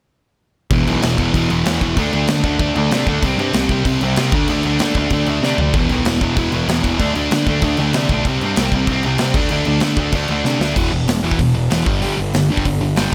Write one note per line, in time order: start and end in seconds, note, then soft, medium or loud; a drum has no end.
0.70 0.83 E1 loud
0.70 0.87 E2 loud
0.70 0.87 B2 loud
0.70 0.86 E3 loud
0.70 kick loud
0.70 crash medium
0.86 0.98 B1 medium
0.86 1.02 E2 medium
0.86 1.02 B2 medium
0.86 1.03 E3 medium
0.86 crash medium
1.02 1.15 E1 medium
1.02 1.18 E2 medium
1.02 1.17 B2 medium
1.02 1.17 E3 medium
1.02 snare loud
1.02 crash medium
1.18 1.30 E1 medium
1.18 1.33 E2 medium
1.18 1.33 B2 medium
1.18 1.34 E3 medium
1.18 kick medium
1.18 crash medium
1.34 1.46 E1 medium
1.34 1.50 E2 medium
1.34 1.50 B2 loud
1.34 1.49 E3 loud
1.34 kick medium
1.34 crash medium
1.50 1.62 E1 loud
1.50 1.64 E2 medium
1.50 1.65 B2 medium
1.50 1.65 E3 medium
1.50 crash medium
1.65 1.82 E2 medium
1.65 1.78 E2 loud
1.65 1.81 B2 medium
1.65 1.80 E3 loud
1.65 snare loud
1.65 crash medium
1.81 1.93 E1 medium
1.81 1.97 E2 medium
1.81 1.97 B2 medium
1.81 1.96 E3 medium
1.81 kick medium
1.81 crash medium
1.97 2.09 D2 loud
1.97 2.14 D3 loud
1.97 2.14 A3 loud
1.97 2.12 D4 loud
1.97 kick medium
1.97 crash medium
2.13 2.25 D2 medium
2.13 2.29 D3 medium
2.13 2.29 A3 medium
2.13 2.29 D4 loud
2.13 crash medium
2.27 2.40 D3 medium
2.27 2.44 D3 medium
2.27 2.44 A3 medium
2.27 2.42 D4 medium
2.27 snare loud
2.27 crash medium
2.43 2.55 D2 medium
2.43 2.58 D3 medium
2.43 2.59 A3 medium
2.43 2.60 D4 medium
2.43 kick medium
2.43 crash medium
2.59 2.71 D2 loud
2.59 2.76 D3 medium
2.59 2.76 A3 loud
2.59 2.76 D4 loud
2.59 kick loud
2.59 crash medium
2.75 2.87 D2 loud
2.75 2.91 D3 medium
2.75 2.92 A3 medium
2.75 2.92 D4 loud
2.75 crash medium
2.91 3.03 C3 loud
2.91 3.07 D3 medium
2.91 3.07 A3 medium
2.91 3.07 D4 loud
2.91 snare loud
2.91 crash medium
3.06 3.18 D2 medium
3.06 3.23 D3 medium
3.06 3.22 A3 medium
3.06 3.22 D4 medium
3.06 kick medium
3.06 crash medium
3.22 3.34 C2 medium
3.22 3.40 C3 loud
3.22 3.39 G3 loud
3.22 3.38 C4 loud
3.22 kick medium
3.22 crash medium
3.37 3.50 G2 medium
3.37 3.55 G3 medium
3.37 3.55 C4 loud
3.37 crash medium
3.42 3.54 C3 medium
3.53 3.66 C2 medium
3.53 3.71 C3 medium
3.53 3.71 G3 loud
3.53 3.70 C4 medium
3.53 snare loud
3.53 crash medium
3.69 3.81 C2 medium
3.69 3.85 C3 medium
3.69 3.85 G3 medium
3.69 3.86 C4 medium
3.69 kick medium
3.69 crash medium
3.85 3.97 C2 medium
3.85 4.03 C3 loud
3.85 4.02 G3 loud
3.85 4.02 C4 loud
3.85 kick medium
3.85 crash medium
4.01 4.13 C2 loud
4.01 4.17 C3 medium
4.01 4.18 G3 medium
4.01 4.17 C4 medium
4.01 crash medium
4.16 4.29 C3 loud
4.16 4.32 C3 medium
4.16 4.33 G3 medium
4.16 4.33 C4 loud
4.16 snare loud
4.16 crash medium
4.32 4.44 D2 medium
4.32 4.50 D3 medium
4.32 4.49 A3 medium
4.32 4.48 D4 loud
4.32 kick loud
4.32 crash medium
4.48 4.61 D2 medium
4.48 4.64 D3 medium
4.48 4.65 A3 loud
4.48 4.66 D4 loud
4.48 crash medium
4.63 4.77 D2 medium
4.63 4.81 D3 medium
4.63 4.81 A3 medium
4.63 4.80 D4 loud
4.63 crash medium
4.79 4.92 D3 medium
4.79 4.96 D3 medium
4.79 4.96 A3 medium
4.79 4.97 D4 medium
4.79 snare loud
4.79 crash medium
4.94 5.07 D2 medium
4.94 5.12 D3 medium
4.94 5.12 A3 medium
4.94 kick medium
4.94 crash medium
4.98 5.11 D4 medium
5.10 5.22 D2 medium
5.10 5.27 D3 medium
5.10 5.28 A3 loud
5.10 5.29 D4 loud
5.10 kick medium
5.10 crash medium
5.26 5.39 D2 medium
5.26 5.44 D3 medium
5.26 5.43 A3 medium
5.26 5.43 D4 loud
5.26 crash medium
5.42 5.54 C3 loud
5.42 5.59 D3 medium
5.42 5.59 A3 medium
5.42 5.60 D4 loud
5.42 snare medium
5.58 5.70 D2 medium
5.58 5.74 D3 medium
5.58 5.74 A3 medium
5.58 5.75 D4 medium
5.58 floor tom loud
5.73 5.86 E1 loud
5.73 5.91 E2 loud
5.73 5.90 B2 loud
5.73 5.89 E3 loud
5.73 kick loud
5.73 crash medium
5.89 6.01 B1 medium
5.89 6.06 E2 medium
5.89 6.07 B2 medium
5.89 6.07 E3 loud
5.89 crash medium
6.05 6.17 E1 medium
6.05 6.23 E2 medium
6.05 6.22 B2 medium
6.05 6.22 E3 medium
6.05 snare loud
6.05 crash medium
6.20 6.33 E1 medium
6.20 6.36 E2 medium
6.20 6.37 B2 medium
6.20 6.37 E3 loud
6.20 kick medium
6.20 crash medium
6.36 6.49 E1 medium
6.36 6.53 E2 loud
6.36 6.53 B2 loud
6.36 6.52 E3 loud
6.36 kick loud
6.36 crash medium
6.52 6.64 E1 medium
6.52 6.68 E2 medium
6.52 6.68 B2 medium
6.52 6.69 E3 loud
6.52 crash medium
6.68 6.80 E2 loud
6.68 6.83 E2 medium
6.68 6.83 B2 medium
6.68 6.82 E3 medium
6.68 snare loud
6.68 crash medium
6.83 6.96 E1 medium
6.83 6.99 E2 medium
6.83 6.99 B2 medium
6.83 6.99 E3 medium
6.83 kick medium
6.83 crash medium
6.99 7.11 D2 medium
6.99 7.15 D3 loud
6.99 7.15 A3 loud
6.99 7.14 D4 loud
6.99 kick medium
6.99 crash medium
7.15 7.28 D2 medium
7.15 7.31 D3 medium
7.15 7.32 A3 medium
7.15 7.32 D4 loud
7.15 crash medium
7.31 7.43 D3 medium
7.31 7.48 D3 medium
7.31 7.47 A3 medium
7.31 7.47 D4 medium
7.31 snare loud
7.31 crash medium
7.46 7.58 D2 medium
7.46 7.62 D3 medium
7.46 7.62 A3 medium
7.46 7.63 D4 medium
7.46 kick medium
7.46 crash medium
7.62 7.74 D2 loud
7.62 7.79 D3 loud
7.62 7.78 A3 loud
7.62 7.77 D4 loud
7.62 kick loud
7.62 crash medium
7.77 7.90 D2 loud
7.77 7.94 D3 medium
7.77 7.95 A3 medium
7.77 7.95 D4 medium
7.77 crash medium
7.93 8.06 C3 loud
7.93 8.12 D3 medium
7.93 8.11 A3 medium
7.93 8.10 D4 medium
7.93 snare loud
7.93 crash medium
8.09 8.21 B1 medium
8.09 8.26 A3 medium
8.09 8.26 D4 medium
8.09 kick loud
8.09 crash medium
8.13 8.27 D3 medium
8.25 8.37 C2 loud
8.25 8.44 C3 medium
8.25 8.43 G3 loud
8.25 8.43 C4 loud
8.25 kick medium
8.25 crash medium
8.41 8.53 G2 loud
8.41 8.59 G3 medium
8.41 8.59 C4 medium
8.41 crash medium
8.46 8.58 C3 medium
8.56 8.69 C2 medium
8.56 8.75 C3 medium
8.56 snare loud
8.56 crash medium
8.60 8.74 G3 loud
8.60 8.74 C4 medium
8.72 8.84 C2 medium
8.72 8.90 G3 medium
8.72 8.90 C4 loud
8.72 kick medium
8.72 crash medium
8.76 8.89 C3 medium
8.87 8.99 C2 loud
8.87 kick medium
8.87 crash medium
8.91 9.06 C3 loud
8.91 9.05 G3 loud
8.91 9.05 C4 loud
9.03 9.16 C2 loud
9.03 9.21 G3 medium
9.03 9.21 C4 loud
9.03 crash medium
9.08 9.20 C3 medium
9.18 9.31 C3 loud
9.18 9.36 C3 medium
9.18 9.36 G3 medium
9.18 snare loud
9.18 crash medium
9.22 9.36 C4 loud
9.34 9.47 D2 medium
9.34 9.51 D3 medium
9.34 9.51 A3 medium
9.34 9.50 D4 loud
9.34 kick loud
9.34 crash loud
9.49 9.63 D2 loud
9.49 9.66 D3 medium
9.49 9.67 A3 loud
9.49 9.67 D4 loud
9.49 crash medium
9.65 9.78 D2 medium
9.65 9.83 D3 medium
9.65 9.82 A3 loud
9.65 9.81 D4 loud
9.65 crash medium
9.80 9.94 D3 medium
9.80 9.99 A3 medium
9.80 9.99 D4 medium
9.80 snare loud
9.80 crash medium
9.84 9.98 D3 medium
9.96 10.09 D2 medium
9.96 10.15 D3 medium
9.96 10.14 A3 medium
9.96 10.14 D4 loud
9.96 kick medium
9.96 crash medium
10.12 10.25 D2 medium
10.12 10.29 A3 loud
10.12 10.30 D4 loud
10.12 kick medium
10.12 crash medium
10.16 10.29 D3 loud
10.28 10.41 D2 loud
10.28 10.46 D3 medium
10.28 10.45 A3 medium
10.28 10.44 D4 loud
10.28 crash medium
10.44 10.57 C3 loud
10.44 10.60 D3 medium
10.44 10.60 A3 medium
10.44 10.60 D4 medium
10.44 snare medium
10.60 10.72 D2 medium
10.60 10.76 D3 medium
10.60 10.77 A3 medium
10.60 10.77 D4 medium
10.60 snare loud
10.75 10.92 E1 loud
10.75 10.91 E2 medium
10.75 10.91 B2 loud
10.75 10.92 E3 loud
10.75 kick loud
10.75 crash loud
10.92 11.07 E1 medium
10.92 11.06 E2 medium
10.92 11.07 B2 medium
11.08 11.22 E1 medium
11.08 11.22 E2 medium
11.08 11.23 B2 medium
11.08 snare loud
11.08 open hi-hat medium
11.23 11.38 E2 medium
11.23 11.38 B2 medium
11.23 11.39 E3 loud
11.31 kick medium
11.39 11.70 E1 medium
11.39 11.53 E2 medium
11.39 11.54 B2 medium
11.39 kick medium
11.39 open hi-hat medium
11.55 11.69 E2 medium
11.55 11.69 B2 medium
11.70 11.85 E1 medium
11.70 11.85 E2 medium
11.70 11.86 B2 medium
11.70 11.86 E3 loud
11.70 snare loud
11.70 open hi-hat medium
11.85 12.02 G1 medium
11.85 12.00 G2 medium
11.85 12.00 D3 medium
11.85 12.01 G3 medium
11.85 kick loud
12.01 12.19 G1 medium
12.01 12.16 G2 loud
12.01 12.16 D3 medium
12.01 12.18 G3 loud
12.01 open hi-hat medium
12.17 12.34 G1 medium
12.17 12.32 G2 medium
12.17 12.32 D3 medium
12.34 12.50 G1 medium
12.34 12.48 G2 medium
12.34 12.49 D3 medium
12.34 snare loud
12.34 open hi-hat medium
12.49 12.64 G2 medium
12.49 12.65 G2 medium
12.49 12.64 D3 medium
12.49 12.66 G3 medium
12.57 kick medium
12.65 12.96 G1 medium
12.65 12.79 G2 medium
12.65 12.80 D3 medium
12.65 kick medium
12.65 open hi-hat medium
12.81 12.95 G2 medium
12.81 12.96 D3 medium
12.96 13.12 G1 medium
12.96 13.12 G2 medium
12.96 13.12 D3 loud
12.96 13.13 G3 loud
12.96 snare loud
12.96 open hi-hat medium